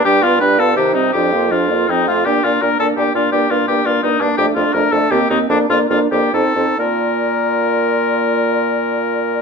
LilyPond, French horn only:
\new Staff \with { instrumentName = "French horn" } { \time 3/4 \key bes \major \tempo 4 = 160 g8 b8 g8 b8 ees8 g8 | f8 bes8 f8 bes8 f8 a8 | bes8 bes8 bes8 bes8 bes8 bes8 | bes8 bes8 bes8 bes8 bes8 bes8 |
a8 a8 a8 a8 bes8 bes8 | bes8 bes8 bes8 bes8 c'8 c'8 | bes2.~ | bes2. | }